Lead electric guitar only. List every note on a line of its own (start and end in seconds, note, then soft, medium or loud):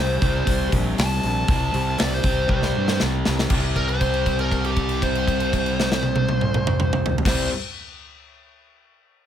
0.00 0.70 C5 medium
0.99 1.97 A5 medium
1.99 2.14 D5 loud
2.14 2.50 C5 medium
2.51 3.00 C5 loud
3.76 3.89 A#4 medium
3.88 4.37 C5 medium
4.40 4.64 A#4 medium
4.66 5.02 G4 medium
5.03 7.15 C5 medium
7.27 7.48 C5 medium